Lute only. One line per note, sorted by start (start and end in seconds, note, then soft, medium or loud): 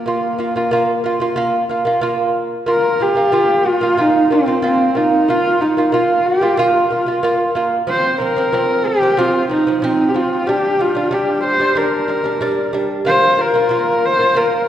0.06 0.32 A#3 medium
0.06 0.33 F4 medium
0.38 0.52 A#3 medium
0.38 0.53 F4 medium
0.56 0.69 A#3 medium
0.56 0.69 F4 medium
0.71 0.98 A#3 loud
0.71 0.99 F4 loud
1.04 1.17 A#3 medium
1.04 1.18 F4 medium
1.20 1.34 A#3 medium
1.20 1.34 F4 medium
1.36 1.63 A#3 loud
1.36 1.63 F4 loud
1.69 1.83 A#3 medium
1.69 1.83 F4 medium
1.85 1.99 A#3 medium
1.85 1.99 F4 medium
2.01 2.54 A#3 loud
2.01 2.55 F4 loud
2.66 2.93 A#3 medium
2.66 2.94 F4 medium
3.00 3.13 A#3 medium
3.00 3.14 F4 medium
3.16 3.29 A#3 medium
3.16 3.30 F4 medium
3.32 3.71 A#3 medium
3.32 3.72 F4 loud
3.81 3.94 A#3 medium
3.81 3.95 F4 medium
3.97 4.23 A#3 medium
3.97 4.24 F4 loud
4.31 4.43 A#3 medium
4.31 4.44 F4 medium
4.46 4.59 A#3 medium
4.46 4.60 F4 medium
4.62 4.88 A#3 loud
4.62 4.89 F4 loud
4.95 5.21 A#3 medium
4.95 5.22 F4 medium
5.28 5.54 A#3 medium
5.28 5.55 F4 loud
5.60 5.73 A#3 medium
5.60 5.74 F4 medium
5.77 5.90 A#3 medium
5.77 5.90 F4 medium
5.92 6.31 A#3 loud
5.92 6.32 F4 loud
6.41 6.54 A#3 medium
6.41 6.55 F4 medium
6.57 6.83 A#3 loud
6.57 6.84 F4 loud
6.90 7.03 A#3 medium
6.90 7.04 F4 medium
7.06 7.19 A#3 medium
7.06 7.20 F4 medium
7.23 7.49 A#3 loud
7.23 7.49 F4 loud
7.55 7.81 A#3 loud
7.55 7.82 F4 loud
7.87 8.13 F3 loud
7.87 8.14 C4 medium
8.20 8.33 F3 medium
8.20 8.34 C4 medium
8.36 8.49 F3 medium
8.36 8.50 C4 medium
8.53 8.91 F3 medium
8.53 8.92 C4 loud
9.02 9.14 F3 medium
9.02 9.15 C4 medium
9.17 9.43 F3 loud
9.17 9.44 C4 loud
9.49 9.63 F3 medium
9.49 9.63 C4 medium
9.67 9.79 F3 medium
9.67 9.80 C4 medium
9.82 10.08 F3 loud
9.82 10.09 C4 loud
10.14 10.40 F3 medium
10.14 10.41 C4 medium
10.47 10.73 G3 medium
10.47 10.74 D4 loud
10.79 10.92 G3 medium
10.79 10.93 D4 medium
10.95 11.08 G3 medium
10.95 11.09 D4 medium
11.11 11.51 G3 loud
11.11 11.51 D4 loud
11.60 11.73 G3 medium
11.60 11.74 D4 medium
11.75 12.02 G3 loud
11.75 12.03 D4 loud
12.08 12.22 G3 medium
12.08 12.22 D4 medium
12.24 12.38 G3 medium
12.24 12.39 D4 medium
12.41 12.67 G3 loud
12.41 12.68 D4 loud
12.73 13.00 G3 medium
12.73 13.00 D4 loud
13.05 13.32 A#3 medium
13.05 13.33 F4 loud
13.37 13.51 A#3 medium
13.37 13.52 F4 medium
13.54 13.68 A#3 medium
13.54 13.68 F4 medium
13.69 14.10 A#3 medium
13.69 14.10 F4 loud
14.19 14.33 A#3 medium
14.19 14.34 F4 medium
14.35 14.62 A#3 loud
14.35 14.63 F4 loud